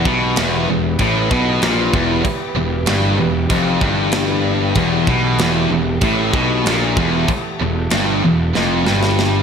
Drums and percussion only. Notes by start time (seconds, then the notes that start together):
0.05 kick
0.36 snare, crash
0.99 kick, crash
1.31 kick
1.62 snare, crash
1.94 kick
2.25 kick, crash
2.86 snare, crash
3.50 kick, crash
3.81 kick
4.12 snare, crash
4.75 kick, crash
5.07 kick
5.38 snare, crash
6.01 kick, crash
6.34 kick
6.66 snare, crash
6.97 kick
7.28 kick, crash
7.90 snare, crash
8.55 snare
8.87 snare
9.03 snare
9.19 snare